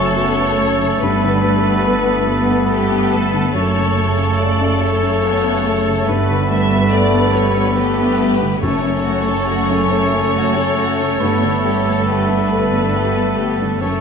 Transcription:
Already playing: F#1 F#2 C#3 F#3 A3 C#4 F#4 A4 C#5 C#6
0.15 B3 F#4 C#5
0.38 C#4
0.58 A3
0.80 C#3
1.00 G1 G2 G3 B3 B4 B5
1.24 D3
1.44 A3 B4
1.65 B3
1.85 B3 A4
2.06 B3
2.28 B3 A4
2.49 B3
2.70 G4 A4 B4
2.91 B3
3.12 A3 A4
3.33 D3
3.54 F#1 F#2 C#3 A3 A4 C#5 C#6
3.76 C#3
3.97 A3
4.18 C#4
4.39 A4 D5
4.61 C#4
4.81 A4 C#5
5.03 C#4
5.23 B3 A4
5.45 C#4
5.66 A3
5.87 C#3
6.08 G1 G2 G3 B3 B4 B5
6.29 D3
6.49 A3 E5
6.70 B3
6.92 A4 D5
7.13 B3
7.35 A4 C#5
7.57 B3
7.77 B3 G4 A4 B4
7.99 B3
8.20 A3
8.42 D3
8.62 F#1 F#2 A3 C#4 A4 C#5 C#6
8.84 C#3 C#4
9.05 A3 F#4
9.26 C#4 A4
9.48 F#4 A4
9.70 C#4
9.92 A3 A4
10.14 C#4
10.36 F#4
10.57 C#4 A4
10.78 A3 F#4
10.99 C#3 C#4
11.20 G1 G2 B3 B5
11.42 D3 D4
11.64 A3 G4
11.86 B3 A4
12.08 G4 A4 B4
12.29 B3 D4
12.51 B3 A4
12.72 B3 D4
12.94 G4 A4
13.16 B3 A4
13.38 A3 G4
13.60 D3 D4
13.81 F#1 F#2 A3 C#4 A4 C#5 C#6

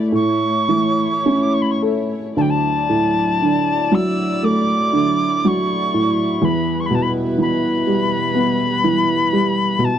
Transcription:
Already playing: A2 E3 A3 E4
0.10 A2 E4 C#5
0.15 C#6
0.69 E3
1.26 C#4
1.42 D6
1.54 C#6
1.62 B5
1.71 C#6
1.82 A4
2.36 D2 F#3 E4 D5 A5
2.41 G5
2.50 A5
2.89 A2
3.42 D3
3.92 F#3 E6
4.43 A3 D6
4.93 D3
5.45 F#3 C#6
5.94 A2
6.42 E2 G3 B4 B5
6.80 C#6
6.86 B5
6.91 B2
6.95 A5
7.02 B5
7.38 E3 B5
7.87 G3
8.35 B3
8.84 E3
9.33 G3
9.79 B2
9.85 A5

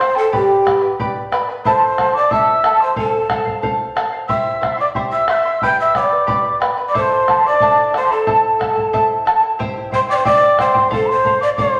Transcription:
Already playing: C5 C6
0.00 E4 C5 E5 G5, bombo rim
0.15 E4 A4 C5 G5 A5
0.32 G4 B4 D5 G5 A5 B5, bombo low
0.65 B4 D5 G5 B5, bombo rim, bombo low
0.81 B4 D5 B5
1.00 G4 B4 D5 G5 B5, bombo low
1.32 B4 D5 G5 B5, bombo rim
1.49 B4 D5 B5
1.65 E4 A4 C5 E5 A5 C6, bombo low
1.98 E4 A4 E5 A5, bombo rim, bombo low
2.14 E4 A4 D5 A5 D6
2.31 E4 A4 C5 E5 A5 E6, bombo low
2.64 E4 A4 E5 A5, bombo rim
2.80 E4 A4 C5 A5 C6
2.96 A4 C5 F5 A5, bombo low
3.29 A4 C5 F5, bombo rim, bombo low
3.45 C5 F5, bombo low
3.62 A4 C5 F5, bombo low
3.96 A4 C5 F5, bombo rim
4.12 C5 F5
4.28 E4 G4 C5 E5 C6 E6, bombo low
4.61 E4 C5 E5 C6, bombo rim, bombo low
4.77 E4 D5 E5 C6 D6
4.95 E4 G4 C5 E5 C6, bombo low
5.12 E5 E6
5.28 E4 C5 E5 C6 G6, bombo rim
5.34 E6
5.45 E4 E5 C6
5.62 G4 B4 D5 G5 B5 G6, bombo low
5.80 E5 E6
5.95 B4 D5 G5 B5 D6, bombo rim, bombo low
6.11 B4 D5 B5
6.27 G4 B4 D5 G5 B5, bombo low
6.60 B4 D5 G5 B5, bombo rim
6.77 B4 D5 B5
6.89 D5 D6
6.94 E4 A4 C5 E5 A5 D6, bombo low
7.01 C6
7.28 E4 A4 E5 A5, bombo rim, bombo low
7.44 E4 A4 D5 A5 D6
7.60 E4 A4 C5 E5 A5, bombo low
7.93 E4 A4 C5 E5 A5, bombo rim
7.97 C6
8.11 E4 A4 A5
8.27 E4 A4 C5 E5 A5, bombo low
8.59 E4 A4 E5 A5, bombo rim, bombo low
8.76 E4 A4 A5, bombo low
8.93 E4 A4 C5 E5 A5, bombo low
9.25 E4 A4 E5 A5, bombo rim
9.42 E4 A4 A5
9.59 E4 G4 C5 E5 G5, bombo low
9.91 E4 C5 E5 G5 C6, bombo low
10.08 E4 C5 D5 G5 D6
10.15 C5 C6
10.25 E4 G4 C5 D5 E5 G5 D6, bombo low
10.57 E4 C5 E5 G5 C6, bombo rim, bombo low
10.74 E4 C5 G5, bombo low
10.90 A4 C5 F5 A5, bombo low
11.09 C5 C6
11.24 A4 C5 F5, bombo low
11.41 C5 D5 F5 D6
11.57 A4 C5 F5 C6, bombo low

